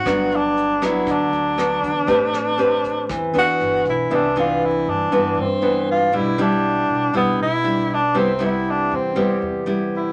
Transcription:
<<
  \new Staff \with { instrumentName = "Grand piano" } { \time 4/4 \key g \major \tempo 4 = 119 r1 | r1 | \key c \major e''4.~ e''16 r4 r16 b'4~ | b'8 r2. r8 |
r1 | }
  \new Staff \with { instrumentName = "Tenor saxophone" } { \time 4/4 \key g \major fis'8 d'4 e'8 d'2~ | d'2~ d'8 fis'4 e'8 | \key c \major d'8 f'8 e'8 d'4 c'4 f'8 | e'8 d'4. b8 e'4 d'8 |
c'8 e'8 d'8 c'4 r4 e'8 | }
  \new Staff \with { instrumentName = "Nylon-string guitar" } { \time 4/4 \key g \major << { <fis b d'>4. <fis b d'>4. <fis b d'>8 r8 | <c' g' b'>8 r8 <c' g' b'>4. <e b d'>4. | \key c \major <e b d'>8 <e b d'>4. <e b d'>8 r8 <e b d'>4 | <g d' e'>8 <g d' e'>4. <g d' e'>8 r8 <g d' e'>8 r8 |
<g b e'>8 <g b e'>4. <g b e'>4 <g b e'>4 | } \\ { g,2 d2 | a2 e4 r4 | c2 g,2 | b,2 b,2 |
c2 c2 | } >> }
  \new Staff \with { instrumentName = "Upright bass" } { \clef bass \time 4/4 \key g \major g,,2 d,8 d,4 e,8 | a,,2 e,8 e,8 g,,8 b,,8 | \key c \major c,4. g,8 g,8 g,4. | b,,4. b,,8 b,,8 b,,4. |
c,4. e,8 e,8 e,4. | }
  \new DrumStaff \with { instrumentName = "Drums" } \drummode { \time 4/4 <hh bd ss>8 hh8 hh8 <hh bd ss>8 <hh bd>8 hh8 <hh ss>8 <hh bd>8 | <hh bd>8 <hh ss>8 hh8 <hh bd>8 <hh bd ss>8 hh8 hh8 <hh bd>8 | r4 r4 r4 r4 | r4 r4 r4 r4 |
r4 r4 r4 r4 | }
>>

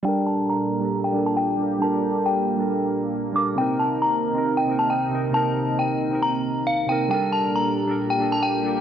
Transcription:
<<
  \new Staff \with { instrumentName = "Synth bell" } { \time 4/4 \key g \minor \tempo 4 = 136 g''8 a''8 bes''4~ bes''16 g''8 a''16 g''4 | a''4 g''2~ g''8 d'''8 | g''8 a''8 bes''4~ bes''16 g''8 a''16 g''4 | a''4 g''4 bes''4 f''8 g''8 |
g''8 a''8 bes''4~ bes''16 g''8 a''16 g''4 | }
  \new Staff \with { instrumentName = "Synth keys" } { \time 4/4 \key g \minor <g d' a' bes'>4. r16 <g d' a' bes'>8. <g d' a' bes'>8. r16 <g d' a' bes'>8 | <g d' a' bes'>4. r16 <g d' a' bes'>4. r16 <g d' a' bes'>8 | <c c' ees' bes'>4. r16 <c c' ees' bes'>8. <c c' ees' bes'>8. r16 <c c' ees' bes'>8 | <c c' ees' bes'>4. r16 <c c' ees' bes'>4. r16 <c c' ees' bes'>8 |
<g d' a' bes'>4. r16 <g d' a' bes'>8. <g d' a' bes'>8. r16 <g d' a' bes'>8 | }
  \new Staff \with { instrumentName = "Analog synth pad" } { \time 4/4 \key g \minor << { <bes, g'>1~ | <bes, g'>1 | <c ees'>1~ | <c ees'>1 |
<bes, g'>1 | } \\ { bes1 | bes1~ | bes1~ | bes1 |
bes1 | } >> }
>>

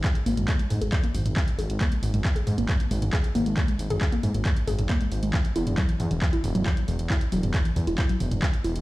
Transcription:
<<
  \new Staff \with { instrumentName = "Synth arpeggio sound" } { \clef bass \time 4/4 \key e \lydian \tempo 4 = 136 gis'16 r16 ais16 gis16 r16 gis16 r16 gis'16 r16 ais16 gis16 r16 gis16 r16 gis'16 r16 | ais16 gis16 r16 gis16 r16 gis'16 r16 ais16 gis16 r16 gis16 r16 gis'16 r16 ais16 gis16 | r16 gis16 r16 gis'16 r16 ais16 gis16 r16 gis16 r16 gis'16 r16 ais16 gis16 r16 gis16 | e16 r16 e'16 r16 fis16 e16 r16 e16 r16 e'16 r16 fis16 e16 r16 e16 r16 |
e'16 r16 fis16 e16 r16 e16 r16 e'16 r16 fis16 e16 r16 e16 r16 e'16 r16 | }
  \new Staff \with { instrumentName = "Detuned saw bass" } { \clef bass \time 4/4 \key e \lydian r8 gis,,16 gis,,16 r8 gis,16 gis,,16 r8 gis,,16 gis,,16 r8 gis,,16 gis,,16 | r8 gis,,16 gis,,16 r8 gis,16 gis,,16 r8 gis,,16 gis,,16 r8 gis,,16 gis,,16 | r8 gis,,16 gis,,16 r8 gis,16 gis,,16 r8 gis,,16 gis,,16 r8 gis,,16 gis,,16 | r8 e,,16 e,,16 r8 e,16 e,,16 r8 e,,16 e,,16 r8 e,,16 e,,16 |
r8 e,,16 e,,16 r8 e,16 e,,16 r8 e,,16 e,,16 r8 e,,16 e,,16 | }
  \new DrumStaff \with { instrumentName = "Drums" } \drummode { \time 4/4 <hc hh bd>16 hh16 hho16 <hh toml>16 <hc hh bd>16 hh16 <hho toml>16 hh16 <hc hh bd>16 hh16 <hho toml>16 <hh toml>16 <hc hh bd>16 hh16 hho16 hh16 | <hc hh bd>16 hh16 hho16 <hh toml>16 <hc hh bd>16 hh16 <hho toml>16 hh16 <hc hh bd>16 hh16 <hho toml>16 <hh toml>16 <hc hh bd>16 hh16 hho16 hh16 | <hc hh bd>16 hh16 hho16 <hh toml>16 <hc hh bd>16 hh16 <hho toml>16 hh16 <hc hh bd>16 hh16 <hho toml>16 <hh toml>16 <hc hh bd>16 hh16 hho16 hh16 | <hc hh bd>16 hh16 hho16 <hh toml>16 <hc hh bd>16 hh16 <hho toml>16 hh16 <hc hh bd>16 hh16 <hho toml>16 <hh toml>16 <hc hh bd>16 hh16 hho16 hh16 |
<hc hh bd>16 hh16 hho16 <hh toml>16 <hc hh bd>16 hh16 <hho toml>16 hh16 <hc hh bd>16 hh16 <hho toml>16 <hh toml>16 <hc hh bd>16 hh16 hho16 hh16 | }
>>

